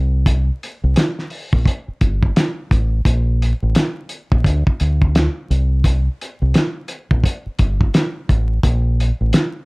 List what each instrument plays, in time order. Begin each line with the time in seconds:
Already playing: fingered electric bass C2
0.26 kick, closed hi-hat
0.63 closed hi-hat
0.84 fingered electric bass C2
0.96 snare, closed hi-hat
1.19 snare
1.30 open hi-hat
1.53 fingered electric bass A#1, kick
1.65 kick, closed hi-hat
1.88 muted fingered electric bass stroke
2.01 fingered electric bass G1, kick, closed hi-hat
2.23 kick
2.36 snare, closed hi-hat
2.71 fingered electric bass A1, kick, closed hi-hat
3.05 fingered electric bass A#1, kick, closed hi-hat
3.42 closed hi-hat
3.63 fingered electric bass A1
3.75 snare, closed hi-hat
4.09 closed hi-hat
4.32 fingered electric bass A#1, kick
4.44 fingered electric bass D2, kick, closed hi-hat
4.67 kick
4.80 fingered electric bass D2, closed hi-hat
5.02 kick
5.15 snare, closed hi-hat
5.50 fingered electric bass C2, closed hi-hat
5.84 kick, closed hi-hat
6.21 closed hi-hat
6.42 fingered electric bass C2
6.54 snare, closed hi-hat
6.88 closed hi-hat
7.11 fingered electric bass A#1, kick
7.24 kick, closed hi-hat
7.46 muted fingered electric bass stroke
7.59 fingered electric bass G1, kick, closed hi-hat
7.81 kick
7.94 snare, closed hi-hat
8.29 fingered electric bass A1, kick, closed hi-hat
8.63 fingered electric bass A#1, kick, closed hi-hat
9.00 closed hi-hat
9.21 fingered electric bass A1
9.33 snare, closed hi-hat